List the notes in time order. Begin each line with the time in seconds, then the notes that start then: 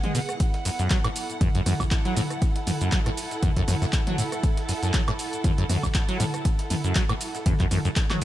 Already playing: B3 G#4 F#5
0.04 G#3, closed hi-hat, mid tom
0.15 B2, open hi-hat, ride, shaker
0.29 cross-stick, closed hi-hat, shaker
0.40 E4, kick, closed hi-hat, ride, shaker
0.54 snare, closed hi-hat
0.65 F#2, snare, open hi-hat, ride, shaker
0.75 A4
0.79 F#2, snare, closed hi-hat, shaker
0.90 F#3, kick, snare, clap, closed hi-hat, ride, shaker
1.04 A2, cross-stick, closed hi-hat, high woodblock
1.16 open hi-hat, ride, shaker
1.30 closed hi-hat, shaker
1.41 F#2, kick, closed hi-hat, mid tom, ride, shaker
1.55 F#2, closed hi-hat, ride
1.66 F#2, cross-stick, open hi-hat, mid tom, ride, shaker
1.80 F#2, kick, high woodblock, shaker
1.91 kick, snare, clap, closed hi-hat, ride, shaker
2.05 F#3, closed hi-hat, ride
2.17 A2, snare, open hi-hat, mid tom, ride, shaker
2.30 cross-stick, closed hi-hat, shaker
2.42 kick, closed hi-hat, ride, shaker
2.56 snare, closed hi-hat
2.67 F#2, open hi-hat, mid tom, ride, shaker
2.81 F#2, closed hi-hat, shaker
2.92 F#3, kick, snare, clap, closed hi-hat, ride, shaker
3.06 A2, cross-stick, closed hi-hat
3.17 open hi-hat, ride, shaker
3.31 snare, closed hi-hat, shaker
3.43 F#2, kick, closed hi-hat, mid tom, ride, shaker
3.56 F#2, kick, closed hi-hat
3.68 F#2, cross-stick, open hi-hat, mid tom, ride, shaker
3.82 F#2, snare, shaker
3.93 kick, snare, clap, closed hi-hat, ride, shaker
4.07 F#3, closed hi-hat, mid tom
4.18 A2, open hi-hat, ride, shaker
4.32 cross-stick, closed hi-hat, shaker
4.43 kick, closed hi-hat, ride, shaker
4.57 snare, closed hi-hat
4.69 F#2, snare, open hi-hat, ride, shaker
4.83 F#2, snare, closed hi-hat, shaker
4.94 F#3, kick, snare, clap, closed hi-hat, ride, shaker
5.08 A2, cross-stick, closed hi-hat, high woodblock
5.19 open hi-hat, ride, shaker
5.33 closed hi-hat, shaker
5.44 F#2, kick, closed hi-hat, mid tom, ride, shaker
5.58 F#2, closed hi-hat, ride
5.69 F#2, cross-stick, open hi-hat, mid tom, ride, shaker
5.83 F#2, kick, high woodblock, shaker
5.94 kick, snare, clap, closed hi-hat, ride, shaker
6.09 F#3, closed hi-hat, ride
6.20 A2, snare, open hi-hat, mid tom, ride, shaker
6.34 cross-stick, closed hi-hat, shaker
6.45 kick, closed hi-hat, ride, shaker
6.59 snare, closed hi-hat
6.70 F#2, open hi-hat, mid tom, ride, shaker
6.84 F#2, closed hi-hat, shaker
6.95 F#3, kick, snare, clap, closed hi-hat, ride, shaker
7.09 A2, cross-stick, closed hi-hat, high woodblock
7.21 open hi-hat, ride, shaker
7.35 snare, closed hi-hat, shaker
7.46 F#2, kick, closed hi-hat, mid tom, ride, shaker
7.59 F#2, kick, clap, closed hi-hat
7.71 F#2, cross-stick, open hi-hat, mid tom, ride, shaker
7.85 F#2, snare, closed hi-hat, shaker
7.96 kick, snare, clap, closed hi-hat, ride, shaker
8.10 F#3, clap, closed hi-hat, mid tom, high woodblock